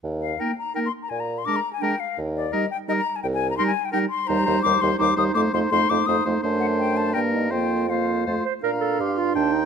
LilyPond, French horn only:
\new Staff \with { instrumentName = "French horn" } { \time 3/4 \key ees \major \tempo 4 = 168 r4 bes4 bes4 | r4 aes4 aes4 | r4 g4 g4 | r4 g4 g4 |
\key bes \major g8 g8 g8 g8 g8 g8 | a8 a8 a8 a8 a8 a8 | a2 bes4 | bes4 bes4 a8 r8 |
d'2. | }